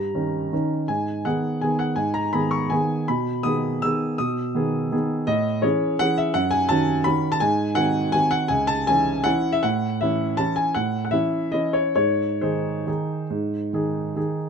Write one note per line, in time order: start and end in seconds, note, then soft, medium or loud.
0.00 0.13 G2 soft
0.00 0.70 A#5 medium
0.15 0.48 D#3 soft
0.15 0.48 C#4 soft
0.15 0.49 D#4 soft
0.53 0.86 D#3 soft
0.53 0.86 C#4 soft
0.53 0.86 D#4 soft
0.88 1.25 G#2 soft
0.88 1.25 G#5 medium
1.25 1.59 D#3 soft
1.25 1.59 B3 soft
1.25 1.59 G#4 soft
1.25 1.62 F#5 medium
1.61 1.95 D#3 soft
1.61 1.95 B3 soft
1.61 1.95 G#4 soft
1.61 1.80 G#5 medium
1.79 1.97 F#5 medium
1.96 2.32 G#2 soft
1.96 2.14 G#5 medium
2.14 2.33 A#5 medium
2.33 2.68 D#3 soft
2.33 2.68 B3 soft
2.33 2.69 G#4 soft
2.33 2.52 B5 medium
2.51 2.71 C#6 medium
2.70 3.05 D#3 soft
2.70 3.05 B3 soft
2.70 3.06 G#4 soft
2.70 3.08 G#5 medium
3.08 3.44 B2 medium
3.08 3.44 B5 medium
3.43 3.79 D#3 soft
3.43 3.79 B3 soft
3.43 3.80 G#4 soft
3.43 3.82 D#6 medium
3.82 4.16 D#3 soft
3.82 4.16 B3 soft
3.82 4.16 G#4 soft
3.82 4.19 E6 medium
4.18 4.54 B2 medium
4.18 5.10 D#6 medium
4.55 4.89 D#3 soft
4.55 4.89 B3 soft
4.55 4.90 G#4 soft
4.92 5.24 D#3 soft
4.92 5.24 B3 soft
4.92 5.24 G#4 soft
5.27 5.62 A2 medium
5.27 5.63 D#5 medium
5.62 5.96 E3 soft
5.62 5.96 C#4 soft
5.62 5.96 G#4 medium
5.62 5.99 C#5 medium
5.99 6.32 E3 soft
5.99 6.32 C#4 soft
5.99 6.32 G#4 soft
5.99 6.17 F#5 loud
6.18 6.34 E5 medium
6.34 6.68 F#2 medium
6.34 6.51 F#5 medium
6.51 6.69 G#5 medium
6.69 7.03 D#3 medium
6.69 7.03 C#4 soft
6.69 7.03 F#4 medium
6.69 7.06 A5 loud
7.04 7.38 D#3 medium
7.04 7.39 C#4 soft
7.04 7.39 F#4 medium
7.04 7.32 B5 loud
7.32 7.41 A5 medium
7.40 7.76 G#2 medium
7.40 7.77 G#5 medium
7.75 8.10 D#3 soft
7.75 8.10 C4 medium
7.75 8.11 F#4 soft
7.75 8.13 F#5 medium
8.12 8.46 D#3 soft
8.12 8.47 C4 soft
8.12 8.47 F#4 soft
8.12 8.32 G#5 medium
8.31 8.50 F#5 medium
8.48 8.86 C#2 medium
8.48 8.67 G#5 medium
8.67 8.86 A5 loud
8.87 9.22 E3 soft
8.87 9.22 C#4 soft
8.87 9.23 E4 medium
8.87 9.25 G#5 loud
9.24 9.59 E3 soft
9.24 9.59 C#4 soft
9.24 9.60 E4 medium
9.24 9.53 F#5 medium
9.52 9.62 E5 medium
9.63 10.00 A2 medium
9.63 10.01 F#5 medium
10.01 10.35 E3 soft
10.01 10.36 C#4 soft
10.01 10.36 E4 soft
10.01 10.38 E5 medium
10.37 10.71 E3 soft
10.37 10.72 C#4 soft
10.37 10.72 E4 soft
10.37 10.56 A5 medium
10.56 10.75 G#5 medium
10.75 11.12 A2 medium
10.75 11.03 F#5 medium
11.05 11.12 F#5 medium
11.11 11.49 E3 soft
11.11 11.49 C#4 soft
11.11 11.50 E4 soft
11.11 11.53 E5 medium
11.52 11.93 E3 soft
11.52 11.93 C#4 soft
11.52 11.93 E4 soft
11.52 11.74 D#5 medium
11.73 11.94 C#5 medium
11.96 12.41 G#2 soft
11.96 12.42 C#5 medium
12.41 12.83 D#3 soft
12.41 12.83 D#4 soft
12.41 12.83 G#4 soft
12.41 14.38 C5 medium
12.87 13.26 D#3 soft
12.87 13.26 D#4 soft
12.87 13.27 G#4 soft
13.30 13.71 G#2 soft
13.73 14.13 D#3 soft
13.73 14.13 D#4 soft
13.73 14.14 G#4 soft
14.16 14.49 D#3 soft
14.16 14.49 D#4 soft
14.16 14.49 G#4 soft